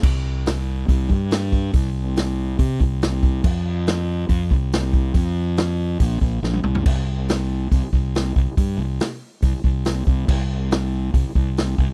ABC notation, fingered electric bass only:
X:1
M:4/4
L:1/16
Q:1/4=140
K:Fdor
V:1 name="Fingered electric bass" clef=bass
C,,8 C,,2 G,,6 | C,,8 C,2 C,,6 | F,,8 F,,2 C,,6 | F,,8 B,,,2 B,,,2 B,,,2 C,,2 |
C,,8 C,, z C,,4 C,, z | G,,2 C,,2 z4 C,, z C,,4 C,,2 | C,,8 C,, z C,,4 C,, z |]